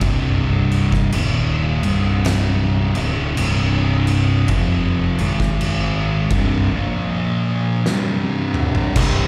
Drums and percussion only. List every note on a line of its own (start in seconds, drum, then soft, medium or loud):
0.01 kick loud
0.01 crash medium
0.72 crash soft
0.92 kick medium
0.92 snare soft
1.12 crash medium
1.83 crash medium
2.25 snare loud
2.25 crash medium
2.95 crash medium
3.37 crash medium
4.07 crash medium
4.48 kick medium
4.48 crash medium
5.18 crash medium
5.40 kick medium
5.40 snare soft
5.61 crash medium
6.30 kick loud
6.30 crash medium
7.86 snare medium
8.54 mid tom medium
8.75 floor tom medium
8.96 kick loud
8.96 crash loud